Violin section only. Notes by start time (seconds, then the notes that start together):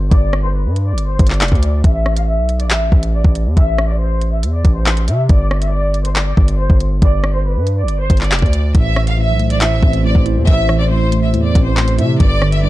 0.11 D5
0.43 C5
0.54 B4
0.87 D5
1.08 C5
1.31 D5
1.84 E5
2.16 F5
2.27 E5
2.60 D5
2.71 E5
3.14 D5
3.57 E5
3.89 D5
4.00 C5
4.32 E5
4.54 D5
4.75 C5
5.08 E5
5.30 D5
5.62 E5
5.72 D5
6.05 C5
6.16 D5
6.59 C5
7.02 D5
7.34 C5
7.45 B4
7.77 D5
7.99 C5
8.21 D5
8.75 E5
9.07 F5
9.18 E5
9.50 D5
9.61 E5
10.05 D5
10.48 E5
10.80 D5
10.91 C5
11.23 E5
11.45 D5
11.66 C5
11.99 E5
12.20 D5
12.53 E5
12.63 D5